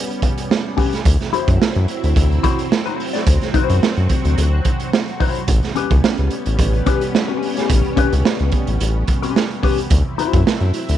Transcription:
Already playing: G3 B3 C#4
0.10 closed hi-hat
0.22 kick, closed hi-hat
0.38 closed hi-hat
0.51 snare
0.77 C#4 G4 B4, kick, open hi-hat
0.93 snare, closed hi-hat
1.05 D2 F#3 C4 E4, kick, closed hi-hat
1.20 snare, closed hi-hat
1.33 E4 F#4 C5, closed hi-hat
1.48 F#2, kick, closed hi-hat
1.62 snare
1.75 F#2, closed hi-hat
1.88 closed hi-hat
2.04 D2, closed hi-hat
2.16 D2, kick, closed hi-hat
2.32 closed hi-hat
2.43 E4 F#4 C5, kick, closed hi-hat
2.59 closed hi-hat
2.72 snare
2.86 E4 F#4 C5, closed hi-hat
3.00 open hi-hat
3.13 E4 F#4 D5, snare, closed hi-hat
3.27 D2 F#4, kick, closed hi-hat
3.41 snare, closed hi-hat
3.54 E4 F#4 C5, kick, closed hi-hat
3.69 F#2, closed hi-hat
3.83 snare
3.97 F#2, closed hi-hat
4.09 kick, closed hi-hat
4.25 D2, closed hi-hat
4.38 D2, closed hi-hat
4.65 kick, closed hi-hat
4.80 closed hi-hat
4.93 snare
5.08 closed hi-hat
5.20 E4 F#4 C5, kick, open hi-hat
5.35 closed hi-hat
5.47 A1 G3 B3 C#4, kick, closed hi-hat
5.63 snare, closed hi-hat
5.75 C#4 G4 B4, closed hi-hat
5.91 C#2, kick, closed hi-hat
6.04 snare
6.17 C#2, closed hi-hat
6.30 closed hi-hat
6.46 A1, closed hi-hat
6.59 A1, kick, closed hi-hat
6.74 closed hi-hat
6.86 C#4 G4 B4, kick, closed hi-hat
7.01 closed hi-hat
7.15 snare
7.28 C#4 G4 B4
7.43 open hi-hat
7.56 C#4 G4 C#5, snare, closed hi-hat
7.70 A1, kick, closed hi-hat
7.84 closed hi-hat
7.96 C#4 G4 B4, kick, closed hi-hat
8.12 C#2, closed hi-hat
8.25 snare
8.39 C#2, closed hi-hat
8.52 kick, closed hi-hat
8.67 A1, closed hi-hat
8.80 A1, closed hi-hat
9.07 kick, closed hi-hat
9.22 C#4 G4 B4, closed hi-hat
9.36 snare
9.51 closed hi-hat
9.63 C#4 G4 B4, kick, open hi-hat
9.78 closed hi-hat
9.90 D2 F#3 C4 E4, kick, closed hi-hat
10.18 E4 F#4 C5, closed hi-hat
10.33 F#2, kick, closed hi-hat
10.47 snare
10.60 F#2, closed hi-hat
10.74 closed hi-hat
10.89 D2, closed hi-hat

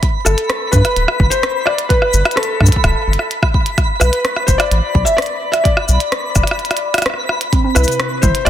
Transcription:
Already playing: B5
0.03 kick, closed hi-hat
0.25 G1 A4, cross-stick, cabasa
0.38 closed hi-hat
0.50 cross-stick, closed hi-hat
0.72 G2 B4, kick, cabasa
0.85 cross-stick, closed hi-hat
0.96 D1, closed hi-hat
1.08 cross-stick
1.20 G1, kick
1.30 C5, closed hi-hat, cabasa
1.43 cross-stick, closed hi-hat
1.66 D5, cross-stick
1.78 closed hi-hat
1.89 B4, kick, closed hi-hat
2.02 cross-stick
2.14 G1, cabasa
2.25 cross-stick, closed hi-hat
2.31 closed hi-hat
2.36 A4, cross-stick, closed hi-hat
2.43 closed hi-hat
2.60 G2, kick, cross-stick
2.66 kick, cabasa
2.72 kick, closed hi-hat
2.84 D1, kick, cross-stick, closed hi-hat
3.08 G1
3.13 closed hi-hat
3.19 cross-stick
3.31 closed hi-hat
3.43 kick, cross-stick
3.54 kick
3.66 closed hi-hat
3.78 kick, cross-stick, closed hi-hat
4.00 B1 B4, cross-stick, cabasa
4.13 closed hi-hat
4.25 cross-stick, closed hi-hat
4.36 cross-stick
4.47 F#1 C5, kick, cabasa
4.58 D5, cross-stick, closed hi-hat
4.71 A1, closed hi-hat
4.95 B1, kick
5.05 E5, cabasa
5.17 D5, cross-stick, closed hi-hat
5.22 closed hi-hat
5.26 closed hi-hat
5.52 E5, cross-stick, closed hi-hat
5.64 D5, kick, closed hi-hat
5.77 cross-stick
5.89 B1, cabasa
6.00 closed hi-hat
6.12 cross-stick, closed hi-hat
6.36 F#1, kick, cross-stick, cabasa
6.43 cross-stick, closed hi-hat
6.51 cross-stick
6.59 closed hi-hat
6.65 closed hi-hat
6.71 cross-stick, closed hi-hat
6.77 closed hi-hat
6.94 cross-stick, closed hi-hat
6.98 cross-stick, closed hi-hat
7.02 cross-stick, closed hi-hat
7.06 cross-stick, closed hi-hat
7.10 cross-stick
7.14 cross-stick
7.29 cross-stick
7.41 closed hi-hat
7.53 C4 B5, kick, closed hi-hat
7.64 C4
7.75 C2 E4 B4, cross-stick, cabasa
7.84 C3, closed hi-hat, cabasa
7.92 cabasa
8.00 cross-stick, closed hi-hat
8.22 G1 E4 C5, kick, mid tom, cabasa
8.35 closed hi-hat
8.45 G1 C4 D5, cross-stick, closed hi-hat

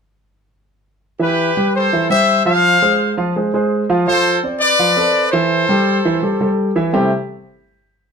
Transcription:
1.19 E3 E4 G4 B4 E5
1.57 G3 G4 B4
1.76 A4 C5
1.93 E3 E4 E5
2.10 G3 G4 C5 E5
2.45 F3 F4 C5 F5
2.82 G#3 G#4 C5
3.17 F3 F4 F5
3.36 G#3 G#4 C5
3.54 G#3 G#4 C5
3.90 F3 F4 F5
4.07 F3 F4 A4 C5 F5
4.43 C4 C5 D5
4.60 B4 D5
4.79 F3 F4 F5
4.97 C4 A4 D5
5.32 E3 E4 A4 C5 E5
5.69 G3 G4 A4
6.05 E3 E4 E5
6.22 G3 G4 A4
6.41 G3 G4 A4
6.76 E3 E4 E5
6.93 C3 G3 A3 C4 E4 G4

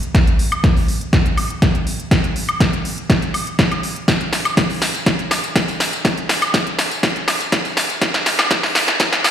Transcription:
0.03 closed hi-hat
0.15 kick, snare, closed hi-hat
0.27 closed hi-hat
0.39 open hi-hat
0.52 closed hi-hat, high woodblock
0.64 kick, snare, closed hi-hat
0.77 open hi-hat
0.88 open hi-hat
1.01 closed hi-hat
1.13 kick, snare, closed hi-hat
1.26 closed hi-hat
1.37 open hi-hat, high woodblock
1.50 closed hi-hat
1.62 kick, snare, closed hi-hat
1.75 closed hi-hat
1.87 open hi-hat
1.99 closed hi-hat
2.11 kick, snare, closed hi-hat
2.24 closed hi-hat
2.36 open hi-hat
2.49 closed hi-hat, high woodblock
2.60 kick, snare, closed hi-hat
2.73 closed hi-hat
2.85 open hi-hat
2.98 closed hi-hat
3.10 kick, snare, closed hi-hat
3.22 closed hi-hat
3.34 open hi-hat, high woodblock
3.47 closed hi-hat
3.59 kick, snare, closed hi-hat
3.72 closed hi-hat, high woodblock
3.83 open hi-hat
3.96 closed hi-hat
4.08 kick, snare, closed hi-hat, tambourine
4.21 closed hi-hat
4.33 snare, open hi-hat, tambourine
4.45 closed hi-hat, tambourine, high woodblock
4.57 kick, snare, closed hi-hat, tambourine
4.70 open hi-hat
4.82 snare, open hi-hat, tambourine
4.94 closed hi-hat, tambourine
5.06 kick, snare, closed hi-hat, tambourine
5.19 closed hi-hat
5.31 snare, open hi-hat, tambourine, high woodblock
5.44 closed hi-hat, tambourine
5.56 kick, snare, closed hi-hat, tambourine
5.68 closed hi-hat, tambourine
5.80 snare, open hi-hat, tambourine
5.93 closed hi-hat, tambourine
6.05 kick, snare, closed hi-hat, tambourine
6.18 closed hi-hat
6.29 snare, open hi-hat, tambourine
6.42 closed hi-hat, tambourine, high woodblock
6.54 kick, snare, closed hi-hat, tambourine
6.67 closed hi-hat
6.79 snare, open hi-hat, tambourine
6.91 closed hi-hat, tambourine
7.03 kick, snare, closed hi-hat, tambourine
7.16 closed hi-hat
7.28 snare, open hi-hat, tambourine, high woodblock
7.41 closed hi-hat, tambourine
7.52 kick, snare, closed hi-hat, tambourine
7.65 closed hi-hat, tambourine
7.77 snare, open hi-hat, tambourine
7.90 closed hi-hat, tambourine
8.02 kick, snare, closed hi-hat, tambourine
8.14 snare, closed hi-hat
8.26 snare, open hi-hat, tambourine
8.39 snare, closed hi-hat, tambourine, high woodblock
8.51 kick, snare, closed hi-hat, tambourine
8.63 snare, open hi-hat
8.75 snare, open hi-hat, tambourine
8.88 snare, closed hi-hat, tambourine
9.00 kick, snare, closed hi-hat, tambourine
9.13 snare, closed hi-hat
9.24 snare, open hi-hat, tambourine, high woodblock

